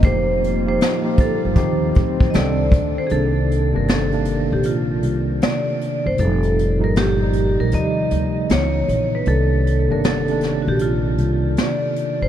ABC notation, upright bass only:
X:1
M:4/4
L:1/16
Q:"Swing 16ths" 1/4=78
K:Cdor
V:1 name="Upright bass" clef=bass
F,,,4 z3 G,,, E,,2 D,,2 C,,2 D,, z | C,,3 G,,,4 B,,,3 C,,2 z3 G,,, | F,,,3 G,,,4 B,,, E,,2 D,,2 _D,,2 B,,,2 | C,,3 G,,,4 B,,,3 C,,2 z3 G,,, |]